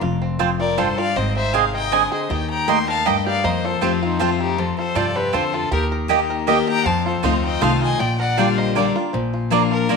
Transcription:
0.01 F1 F2 F4
0.22 C4
0.39 F2 C4 F4 C5 A5
0.60 F4 A#4 D5
0.78 G2 C4 F4 A4 C5 A5
0.98 F4 D5 F5
1.16 G#1 G#2 C4 C5 D#5
1.36 D#4 C5 E5
1.53 C3 C4 G#4 C5 D#5 F5 G#5
1.74 A#4 D#5 G5
1.92 D3 C4 G#4 D#5 G#5
2.12 G#4 C5 D#5
2.30 D#2 D#3 G4 D#5 G5
2.50 G5 A#5
2.68 A3 A#3 G4 D#5 G5 A#5 C6
2.88 A#4 F5 A5
3.05 G2 A#3 G4 D#5 G5 A#5
3.26 G4 D5 F5
3.44 F2 A#3 C5 D#5
3.64 F4 A4 C5
3.81 F2 F3 A3 C4 F4 G4 C5 A5
4.02 C4 D#4 F4
4.19 F3 A3 C4 F4 C5 A5
4.40 D#4 F4 G4
4.58 F2 C4 F4 A4
4.78 F4 A4 C5
4.95 G2 C3 C4 F4 A4 C5 D5 A5
5.16 C4 G4 B4
5.33 F2 D3 C4 F4 A4 C5 A5
5.53 F4 A4
5.71 D#2 D#3 G4 A#4
5.92 A#4
6.08 D#3 A#3 D#4 G4 D#5 A#5
6.30 A#4
6.47 D#3 A#3 D#4 G4 D#5 G5 A#5
6.68 G4 G5 A#5
6.85 F2 C4 F5 A5
7.06 F4 A4 C5
7.23 D2 A3 C4 D#4 F4 A4 C5 D#5 F5 C6
7.44 D#4 D#5 G5
7.61 C2 D#3 A3 C4 D#4 F4 A4 F5 A5 C6
7.82 F4 D#5 G#5
7.99 A#1 A#2 F4 D5 G5
8.20 A#4 D5 F#5
8.37 D3 G3 A#3 D4 F4 D5 F5 G5
8.58 A#4 C5 D#5
8.75 D3 G3 A#3 D4 F4 A#4 D5 G5
8.95 D4 F4
9.13 A#1 A#2 F3
9.34 F4
9.50 F3 A#3 D4 F4 D5 A#5
9.71 F4 A#4
9.89 F3 A#3 D4 F4 D5 A#5

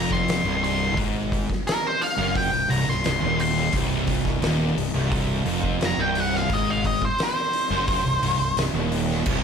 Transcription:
Already playing: F1 F2 A#5
0.11 C6, kick, snare
0.28 snare, open hi-hat
0.44 C1 C2
0.64 C6, open hi-hat
0.97 G#1 G#2, kick, open hi-hat
1.32 kick, open hi-hat
1.50 kick, snare
1.67 A#4, snare, open hi-hat
1.87 C5
2.01 F5, open hi-hat
2.18 F#1 F#2
2.35 G5, kick, open hi-hat
2.53 C1 C2
2.70 C1 C2 A#5, open hi-hat
2.88 C1 C2 C6, snare
3.04 C1 C2, snare, open hi-hat
3.20 D#1 D#2
3.24 D#2
3.40 C6, open hi-hat
3.73 C1 C2, kick, open hi-hat
4.07 kick, open hi-hat
4.25 kick, snare
4.42 D#1 D#2, snare, open hi-hat
4.76 C1 C2, open hi-hat
4.94 C1 C2
5.12 kick, open hi-hat
5.46 F1 F2, open hi-hat
5.63 kick
5.81 snare, open hi-hat
5.85 A#5
5.97 C1 C2 G5
6.15 open hi-hat
6.20 F#5
6.35 F5, snare
6.49 G#1 G#2 D#5, kick, open hi-hat
6.71 F5
6.84 D#5, kick, open hi-hat
7.02 C5, kick
7.18 snare, open hi-hat
7.24 C5
7.53 open hi-hat
7.70 F#1 F#2
7.88 kick, open hi-hat
8.04 C1 C2
8.22 C1 C2, open hi-hat
8.39 C1 C2
8.56 C1 C2, snare, open hi-hat
8.74 D#1 D#2
8.92 open hi-hat
9.11 snare
9.26 C1 C2, kick, crash

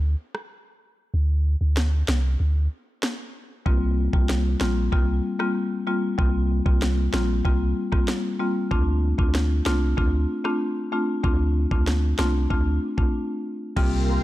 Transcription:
Already playing: D2
0.35 cross-stick
1.14 D2
1.61 D2
1.77 snare
2.08 C2, snare
2.40 D2
3.03 snare
3.66 C2 G3 A#3 C4 F4, kick
4.13 C2 G3 A#3 C4 F4, kick
4.29 snare
4.61 A#1 G3 A#3 C4 F4, snare
4.92 C2 G3 A#3 C4 F4, kick
5.39 G3 A#3 C4 F4, cross-stick
5.87 G3 A#3 C4 F4
6.18 C2 G3 A#3 C4 F4, kick
6.66 C2 G3 A#3 C4 F4, kick
6.82 snare
7.13 A#1 G3 A#3 C4 F4, snare
7.45 C2 G3 A#3 C4 F4, kick
7.92 G3 A#3 C4 F4, kick, cross-stick
8.08 snare
8.39 G3 A#3 C4 F4
8.71 D2 A3 C4 D4 F4, kick
9.18 D2 A3 C4 D4 F4, kick
9.35 snare
9.66 C2 A3 C4 D4 F4, snare
9.97 D2 A3 C4 D4 F4, kick
10.44 A3 C4 D4 F4, cross-stick
10.92 A3 C4 D4 F4
11.24 D2 A3 C4 D4 F4, kick
11.71 D2 A3 C4 D4 F4, kick
11.87 snare
12.19 C2 A3 C4 D4 F4, snare
12.50 D2 A3 C4 D4 F4, kick
12.98 A3 C4 D4 F4, kick
13.76 C2 C3 G3 A#3 C4 F4 A#4 F5 G5 C6, kick, crash
14.08 A#3

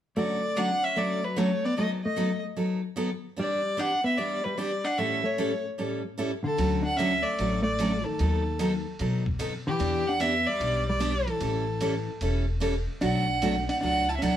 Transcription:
0.16 D3 F#3 A3 C#4 F#4 D5
0.56 D3 F#3 A3 C#4 D4 F#4 F#5
0.83 C#4 E5
0.96 D3 F#3 A3 C#4 F#4 D5
1.24 F#3 B4
1.36 D3 F#3 A3 C#4 F#4 C#5
1.64 B3 D5
1.77 D#3 F#3 A3 B3 D#4 A4 D#5
2.04 A3 D#5
2.16 D#3 F#3 B3 D#4 A4
2.56 D#3 F#3 B3 D#4 A4
2.96 D#3 F#3 B3 D#4 A4
3.36 E3 G3 B3 D4 G4 D5
3.77 E3 B3 D4 G4 F#5
4.04 B3 E5
4.18 E3 G3 B3 D4 G4 D5
4.44 G3 B4
4.57 E3 G3 B3 D4 G4 D5
4.84 D4 F#5
4.98 A2 E3 G3 A3 C#4 E4 A4 E5
5.24 A3 C#5
5.38 A2 E3 G3 C#4 E4 A4
5.78 A2 E3 G3 C#4 E4 A4
6.18 A2 E3 G3 C#4 E4 A4
6.44 D3 A4
6.58 D2 D3 F#3 A3 C#4 F#4, ride
6.83 D4 F#5
6.96 D3 F#3 A3 C#4 F#4 E5, hi-hat pedal, ride
7.22 A3 D5
7.39 A1 D3 F#3 A3 C#4 F#4, ride
7.63 A3 D5
7.79 D3 F#3 A3 C#4 F#4, hi-hat pedal, ride
8.04 D#3 A4
8.19 D#2 D#3 F#3 B3 D#4 A4, ride
8.59 D#3 F#3 B3 D#4 A4, hi-hat pedal, ride
8.99 B2 D#3 F#3 B3 D#4 A4, ride
9.26 kick
9.39 D#3 F#3 B3 D#4 A4, hi-hat pedal, ride
9.67 E3 G4
9.79 E2 E3 B3 D4 G4, ride
10.08 D4 F#5
10.20 E3 B3 D4 G4 E5, hi-hat pedal, ride
10.47 G3 D5
10.60 B1 E3 B3 D4 G4, ride
10.88 G3 D5
10.99 E3 B3 D4 G4, hi-hat pedal, ride
11.28 E3 A4, ride
11.40 A1 E3 G3 C#4 E4 A4, ride
11.81 E3 G3 C#4 E4 A4, hi-hat pedal, ride
12.21 E1 E3 G3 C#4 E4 A4, ride
12.60 E3 G3 C#4 E4 A4, hi-hat pedal, ride
13.01 B1 B2 F#3 A3 D4 F#4 F#5, ride
13.42 B2 F#3 A3 D4 F#4, hi-hat pedal, ride
13.69 D4 F#5, ride
13.81 C#2 B2 F#3 A3 D4 F#4 F#5
14.09 E4 A5
14.16 C#4 E5
14.22 D2 B2 F#3 A3 D4 F#4 F#5, hi-hat pedal, ride

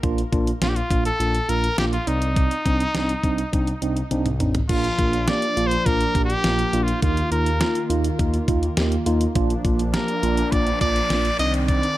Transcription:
0.03 A#1 A#3 D4 F4, kick, closed hi-hat
0.18 closed hi-hat
0.32 A#1 A#3 D4 F4, kick, closed hi-hat
0.47 closed hi-hat
0.62 A#1 A#3 D4 F4, snare, closed hi-hat
0.69 G4
0.76 F4, closed hi-hat
0.91 A#1 A#3 D4 F4, kick, closed hi-hat
1.05 A4, closed hi-hat
1.20 A#1 A#3 D4 F4, closed hi-hat
1.35 closed hi-hat
1.49 A#1 A#3 D4 F4 A#4, closed hi-hat
1.64 closed hi-hat
1.78 A#1 A#3 D4 F4 G4, snare, closed hi-hat
1.93 F4, closed hi-hat
2.07 C2 C4 D#4 D5, closed hi-hat
2.22 closed hi-hat
2.36 kick, closed hi-hat
2.51 closed hi-hat
2.66 C2 C4 D4 D#4, kick, closed hi-hat
2.80 closed hi-hat
2.95 C2 C4 D4 D#4, snare, closed hi-hat
3.09 closed hi-hat
3.24 C2 C4 D4 D#4, kick, closed hi-hat
3.38 closed hi-hat
3.53 C2 C4 D4 D#4, kick, closed hi-hat
3.67 closed hi-hat
3.82 C2 C4 D4 D#4, closed hi-hat
3.97 closed hi-hat
4.11 C2 C4 D4 D#4, closed hi-hat, high tom
4.26 closed hi-hat, mid tom
4.40 A1 C4 D4 D#4, closed hi-hat, mid tom
4.55 closed hi-hat, floor tom
4.69 A#1 F3 A#3 D4 F4, kick, closed hi-hat, crash
4.84 closed hi-hat
4.99 A#1 A#3 D4 F4, kick, closed hi-hat
5.13 closed hi-hat
5.28 A#3 D4 G4 D5, snare, closed hi-hat
5.42 closed hi-hat
5.57 A#1 A#3 D4 F4, closed hi-hat
5.67 C5
5.71 closed hi-hat
5.86 A#1 A#3 D4 F4 A#4, kick, closed hi-hat
6.01 closed hi-hat
6.15 A#1 A#3 D4 G4, kick, closed hi-hat
6.25 G4
6.30 closed hi-hat
6.44 A#1 A#3 D4 F4, snare, closed hi-hat
6.59 closed hi-hat
6.73 A#1 A#3 D4 F4, closed hi-hat
6.83 F4
6.88 closed hi-hat
7.02 D#2 D#3 A#3 D#4 F4, kick, closed hi-hat
7.17 closed hi-hat
7.32 D#2 A#3 D#4 F4 A#4, closed hi-hat
7.46 closed hi-hat
7.61 A#3 D#4 F4, snare, closed hi-hat
7.75 closed hi-hat
7.90 D#2 A#3 D#4 F4, closed hi-hat
8.04 closed hi-hat
8.19 D#2 A#3 D#4 F4, kick, closed hi-hat
8.34 closed hi-hat
8.48 D#2 A#3 D#4 F4, kick, closed hi-hat
8.63 closed hi-hat
8.77 D#2 A#3 D#4 G4, snare, closed hi-hat
8.92 closed hi-hat
9.06 D#2 A#3 D#4 F4, closed hi-hat
9.21 closed hi-hat
9.35 A#1 F3 A#3 D4 F4, kick, closed hi-hat, noise sweep
9.50 closed hi-hat
9.64 A#1 A#3 D4 F4, kick, closed hi-hat
9.79 closed hi-hat
9.94 A#3 D4 G4 A#4, snare, closed hi-hat
10.08 closed hi-hat
10.23 A#1 A#3 D4 F4, closed hi-hat
10.37 closed hi-hat
10.52 A#1 A#3 D4 F4 D5, kick, closed hi-hat
10.67 closed hi-hat
10.81 A#1 A#3 D4 F4 D5, kick, closed hi-hat
10.96 closed hi-hat
11.10 A#1 A#3 D4 F4, snare, closed hi-hat
11.25 closed hi-hat
11.39 C2 D#3 C4 D4 D#4 D5 D#5, closed hi-hat
11.54 closed hi-hat
11.68 D5, kick, closed hi-hat
11.83 closed hi-hat

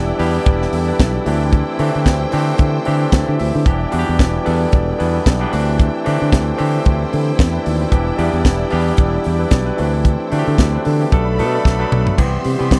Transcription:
Already playing: E1 E3 G3 B3 D4 E4 G4 D5 G5
0.18 E2 E3 G3 B3 D4 G4, open hi-hat
0.46 E1, kick, closed hi-hat
0.62 snare
0.73 E2 A4, open hi-hat
0.88 D4 B4
1.00 B1, kick, snare, closed hi-hat
1.14 F#4 D5
1.25 D2 E3 A3 C4 D4 G4 C5 G5, open hi-hat
1.53 kick, closed hi-hat
1.79 D3 E3 A3 C4 D4 G4, open hi-hat
1.96 D3
2.06 D2, kick, snare, closed hi-hat
2.32 D3 E3 A3 C4 D4 G4, open hi-hat
2.58 D3, kick, closed hi-hat
2.85 D3 E3 A3 C4 D4 G4 C5, open hi-hat
3.12 D2 F#4 D5, kick, snare, closed hi-hat
3.28 D3 G4 E5
3.39 D2 E5, open hi-hat
3.54 D3 E4 C5
3.65 E1 E3 G3 B3 D4 G4 D5 G5, kick, closed hi-hat
3.91 E2 E3 G3 B3 D4 F#4, open hi-hat
3.99 G4
4.09 E2
4.19 E1, kick, snare, closed hi-hat
4.44 E2 E3 G3 B3 D4 A4, open hi-hat
4.72 E1, kick, closed hi-hat
4.98 E2 E3 G3 B3 D4 E4, open hi-hat
5.26 B1, kick, snare, closed hi-hat
5.40 E3 G3 B3 D4 G4
5.51 D2 E3 A3 C4 D4 E4 F#4 C5, open hi-hat
5.59 G4
5.80 kick, closed hi-hat
6.04 D3 E3 A3 C4 D4 G4, open hi-hat
6.22 D3
6.32 D2, kick, snare, closed hi-hat
6.57 D3 E3 A3 C4 D4 G4, open hi-hat
6.85 D2, kick, closed hi-hat
7.13 D3, open hi-hat
7.39 E2, kick, snare, closed hi-hat
7.53 D4 B4
7.64 D#2 F#4 D5, open hi-hat
7.80 E4 C5
7.90 E1 E3 G3 B3 D4 G4 D5, kick, closed hi-hat
8.17 E2 E3 G3 B3 D4 G4, open hi-hat
8.33 E2
8.45 E1, kick, snare, closed hi-hat
8.70 E2 E3 G3 B3 D4 G4, open hi-hat
8.97 E1, kick, closed hi-hat
9.24 E2, open hi-hat
9.39 D4 B4
9.51 B1 F#4 D5, kick, snare, closed hi-hat
9.66 D4 B4
9.77 D2 E3 A3 C4 D4 F#4 C5, open hi-hat
9.85 G4
10.05 kick, closed hi-hat
10.32 D3 E3 A3 C4 D4 F#4, open hi-hat
10.39 G4
10.48 D3
10.58 D2 B3 G4, kick, snare, closed hi-hat
10.74 D4 B4
10.85 D3 C4 A4, open hi-hat
11.01 B3 G4
11.11 B1 F#3 A3 B3 D4 A4 D5 B5, kick, closed hi-hat
11.38 B2 F#3 A3 B3 D4 A4 E5, open hi-hat
11.65 B1 D5, kick, snare
11.78 F#3 A3 B3 D4 A4
11.92 B1 B4, mid tom
12.07 floor tom
12.17 C2 E3 G3 B3 C4 G4 E5 C6, kick, crash
12.44 C3, open hi-hat
12.59 C3 E3 G3 B3 C4 G4
12.71 C2, kick, snare, closed hi-hat

